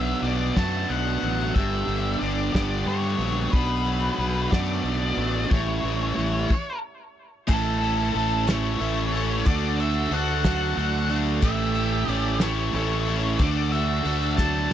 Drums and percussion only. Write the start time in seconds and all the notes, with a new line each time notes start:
0.23 closed hi-hat
0.57 kick, snare, closed hi-hat
0.90 closed hi-hat
1.23 closed hi-hat
1.56 kick, closed hi-hat
1.89 closed hi-hat
2.22 closed hi-hat
2.55 kick, snare, closed hi-hat
2.88 closed hi-hat
3.21 closed hi-hat
3.53 kick, closed hi-hat
3.87 closed hi-hat
4.20 closed hi-hat
4.52 kick, snare, closed hi-hat
4.85 closed hi-hat
5.18 closed hi-hat
5.51 kick, closed hi-hat
5.85 closed hi-hat
6.18 closed hi-hat
6.50 kick, crash
7.48 kick, crash, shaker
7.83 ride
8.15 ride
8.47 snare, ride, shaker
8.82 ride
9.14 ride
9.45 kick, ride, shaker
9.79 ride
10.11 ride
10.44 kick, snare, ride, shaker
10.77 ride
11.09 ride
11.42 kick, crash, shaker
11.74 ride
12.08 ride
12.40 snare, ride, shaker
12.72 ride
13.06 ride
13.39 kick, ride, shaker
13.72 ride
14.05 ride
14.23 shaker
14.38 kick, snare, shaker